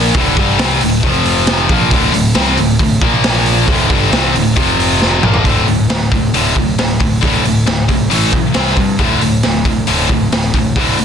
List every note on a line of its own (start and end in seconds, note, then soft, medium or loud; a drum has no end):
0.00 0.11 A#1 medium
0.00 0.14 A#2 loud
0.00 0.14 F3 medium
0.00 0.14 A#3 loud
0.14 0.35 D1 medium
0.14 0.36 D2 medium
0.14 0.37 A2 loud
0.14 0.36 D3 medium
0.14 kick loud
0.14 open hi-hat medium
0.37 0.57 G1 medium
0.37 0.58 G2 medium
0.37 0.58 D3 medium
0.37 0.58 G3 medium
0.37 kick loud
0.37 open hi-hat medium
0.58 0.80 C2 medium
0.58 0.80 C3 medium
0.58 0.80 G3 loud
0.58 0.81 C4 medium
0.58 snare loud
0.58 open hi-hat medium
0.81 1.02 D1 medium
0.81 0.99 D2 medium
0.81 0.99 A2 medium
0.81 open hi-hat medium
1.03 1.66 F1 medium
1.03 1.69 F2 loud
1.03 1.69 C3 loud
1.03 1.68 F3 loud
1.03 kick loud
1.03 open hi-hat medium
1.25 open hi-hat medium
1.47 snare loud
1.47 open hi-hat medium
1.69 1.90 A#1 medium
1.69 1.90 A#2 medium
1.69 1.91 F3 medium
1.69 1.91 A#3 loud
1.69 kick loud
1.69 open hi-hat medium
1.90 2.12 D1 medium
1.90 2.12 D2 medium
1.90 2.12 A2 medium
1.90 2.13 D3 loud
1.90 kick loud
1.90 open hi-hat medium
2.13 2.34 D1 medium
2.13 2.31 D2 medium
2.13 2.31 A2 medium
2.13 open hi-hat medium
2.35 2.56 C2 medium
2.35 2.56 C3 medium
2.35 2.57 G3 loud
2.35 2.57 C4 loud
2.35 snare loud
2.35 open hi-hat medium
2.57 2.79 D1 medium
2.57 2.75 D2 medium
2.57 2.75 A2 medium
2.57 open hi-hat medium
2.79 3.00 D1 medium
2.79 2.97 D2 medium
2.79 2.98 A2 medium
2.79 kick medium
2.79 open hi-hat medium
3.02 3.64 A#1 loud
3.02 3.67 A#2 medium
3.02 3.67 F3 loud
3.02 3.68 A#3 loud
3.02 kick loud
3.24 snare loud
3.24 open hi-hat medium
3.46 open hi-hat medium
3.67 3.89 D1 medium
3.67 3.89 D2 medium
3.67 3.89 A2 medium
3.67 3.88 D3 loud
3.67 kick loud
3.67 open hi-hat medium
3.89 4.11 G1 medium
3.89 4.11 G2 medium
3.89 4.11 D3 medium
3.89 4.10 G3 medium
3.89 kick loud
3.89 open hi-hat medium
4.11 4.33 C2 medium
4.11 4.33 C3 medium
4.11 4.34 G3 medium
4.11 4.34 C4 loud
4.11 snare loud
4.11 open hi-hat medium
4.34 4.55 D1 medium
4.34 4.52 D2 medium
4.34 4.52 A2 medium
4.34 open hi-hat medium
4.56 5.19 F1 medium
4.56 5.22 F2 loud
4.56 5.22 C3 loud
4.56 5.22 F3 loud
4.56 kick loud
4.56 open hi-hat medium
4.80 open hi-hat medium
5.02 snare medium
5.22 5.44 A#1 medium
5.22 5.44 A#2 medium
5.22 5.45 F3 medium
5.22 5.45 A#3 loud
5.22 mid tom medium
5.34 floor tom medium
5.45 5.63 D1 medium
5.45 5.65 D2 medium
5.45 5.66 A2 medium
5.45 5.66 D3 medium
5.45 kick medium
5.45 open hi-hat medium
5.67 5.85 D1 medium
5.67 5.87 D2 medium
5.67 5.87 A2 medium
5.67 open hi-hat soft
5.90 6.08 D1 medium
5.90 6.10 D2 medium
5.90 6.10 A2 medium
5.90 snare loud
5.90 open hi-hat medium
6.12 6.30 D1 medium
6.12 6.32 D2 medium
6.12 6.32 A2 medium
6.12 kick medium
6.12 open hi-hat soft
6.34 6.52 D1 medium
6.34 6.55 D2 medium
6.34 6.55 A2 medium
6.34 6.55 D3 medium
6.34 open hi-hat medium
6.56 6.74 D1 medium
6.56 6.76 D2 medium
6.56 6.76 A2 medium
6.56 kick medium
6.56 open hi-hat soft
6.78 6.96 D1 medium
6.78 6.98 D2 medium
6.78 6.98 A2 medium
6.78 snare medium
6.78 open hi-hat medium
7.00 7.19 D1 medium
7.00 7.20 D2 medium
7.00 7.20 A2 medium
7.00 kick medium
7.00 open hi-hat medium
7.21 7.41 D1 medium
7.21 7.42 D2 medium
7.21 7.43 A2 medium
7.21 7.43 D3 medium
7.21 kick loud
7.21 open hi-hat medium
7.44 7.63 D1 medium
7.44 7.64 D2 medium
7.44 7.64 A2 medium
7.44 open hi-hat medium
7.66 7.85 D1 medium
7.66 7.86 D2 medium
7.66 7.87 A2 medium
7.66 snare loud
7.66 open hi-hat medium
7.88 8.07 C2 medium
7.88 8.08 D2 medium
7.88 8.09 A2 medium
7.88 kick medium
7.88 open hi-hat medium
8.10 8.29 A1 medium
8.10 8.31 A2 medium
8.10 8.32 E3 medium
8.10 8.32 A3 loud
8.10 open hi-hat medium
8.32 8.51 B1 medium
8.32 8.52 A2 medium
8.32 8.53 E3 medium
8.32 kick medium
8.32 open hi-hat soft
8.54 8.73 C2 medium
8.54 8.75 C3 medium
8.54 8.76 G3 medium
8.54 8.76 C4 medium
8.54 snare loud
8.54 open hi-hat medium
8.66 snare soft
8.76 8.95 G2 medium
8.76 8.97 C3 medium
8.76 8.97 G3 medium
8.76 kick medium
8.76 open hi-hat medium
8.99 9.17 D1 medium
8.99 9.20 D2 medium
8.99 9.20 A2 medium
8.99 9.20 D3 medium
8.99 kick loud
8.99 open hi-hat medium
9.21 9.40 D1 medium
9.21 9.41 D2 medium
9.21 9.42 A2 medium
9.21 open hi-hat soft
9.43 9.62 D1 medium
9.43 9.64 D2 medium
9.43 9.64 A2 medium
9.43 snare loud
9.43 open hi-hat medium
9.65 9.83 D1 medium
9.65 9.85 D2 medium
9.65 9.86 A2 medium
9.65 kick medium
9.65 open hi-hat medium
9.87 10.06 D1 medium
9.87 10.08 D2 medium
9.87 10.08 A2 medium
9.87 10.09 D3 medium
9.87 open hi-hat medium
10.09 10.27 D1 medium
10.09 10.30 D2 medium
10.09 10.30 A2 medium
10.09 kick medium
10.09 open hi-hat soft
10.31 10.50 D1 medium
10.31 10.52 D2 medium
10.31 10.52 A2 medium
10.31 snare loud
10.31 open hi-hat medium
10.54 10.72 D1 medium
10.54 10.74 D2 medium
10.54 10.75 A2 medium
10.54 kick medium
10.54 open hi-hat medium
10.76 10.94 D1 medium
10.76 10.97 D2 medium
10.76 10.97 A2 medium
10.76 10.97 D3 medium
10.76 kick loud
10.76 open hi-hat medium
10.98 11.05 D1 medium
10.98 11.05 D2 medium
10.98 11.05 A2 medium
10.98 open hi-hat medium